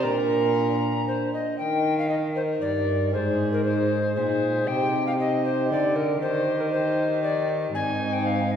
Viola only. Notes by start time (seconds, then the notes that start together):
0.03 A#4
1.59 A#4
2.11 A#4
3.13 G#4
3.64 G#4
4.16 G#4
4.68 G4
5.19 G4
6.21 G4
7.74 D#4